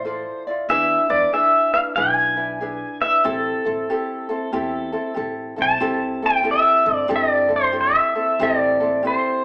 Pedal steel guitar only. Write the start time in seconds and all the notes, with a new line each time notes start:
Already playing: C5
0.70 E5
1.10 D5
1.34 E5
1.74 F5
1.96 G#5
3.02 E5
3.25 A4
5.62 A5
6.26 G5
6.51 E5
6.95 D5
7.16 D5
7.56 C5
7.81 E5
8.43 D5
9.07 C5